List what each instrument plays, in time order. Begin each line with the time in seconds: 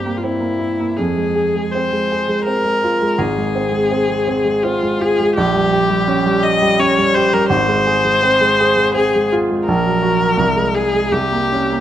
Already playing: grand piano G2 A#3 C4, viola G4
0.06 grand piano A#3
0.17 viola F4
0.23 grand piano C4, viola E4
0.40 grand piano A#3
0.59 grand piano E4
0.79 grand piano A#3
0.97 grand piano F2, viola G#4
1.17 grand piano G#3
1.36 grand piano G#4
1.56 grand piano G#3
1.72 grand piano C4, viola C5
1.92 grand piano G#3
2.12 grand piano G#4
2.28 grand piano G#3
2.45 grand piano C4, viola A#4
2.65 grand piano G#3
2.84 grand piano F4
3.02 grand piano G#3
3.18 grand piano G#1, viola G#4
3.38 grand piano G#3
3.55 grand piano C4
3.71 grand piano G#3
3.91 grand piano C4
4.08 grand piano G#3
4.27 grand piano C4
4.44 grand piano G#3
4.63 grand piano C4, viola F4
4.83 grand piano G#3
5.00 grand piano F4, viola G#4
5.20 grand piano G#3
5.36 grand piano A#1, viola G4
5.54 grand piano G3
5.72 grand piano G4
5.89 grand piano G3
6.08 grand piano C#4
6.26 grand piano G3
6.43 grand piano G4, viola D#5
6.62 grand piano G3
6.79 grand piano C#4, viola C#5
6.98 grand piano G3
7.14 grand piano G4, viola C5
7.33 grand piano G3, viola A#4
7.49 grand piano G#1, viola C5
7.68 grand piano G#3
7.87 grand piano G#4
8.04 grand piano G#3
8.23 grand piano C4
8.41 grand piano G#3
8.60 grand piano G#4
8.77 grand piano G#3
8.94 grand piano C4, viola G#4
9.15 grand piano G#3
9.32 grand piano F4
9.51 grand piano G#3
9.65 grand piano A#1, viola A#4
9.85 grand piano F#3
10.02 grand piano F#4
10.20 grand piano F#3
10.37 grand piano C2
10.56 grand piano G#3
10.75 grand piano G#4, viola G#4
10.94 grand piano G#3
11.12 grand piano C2, viola G4
11.32 grand piano A#3
11.52 grand piano C#4
11.72 grand piano A#3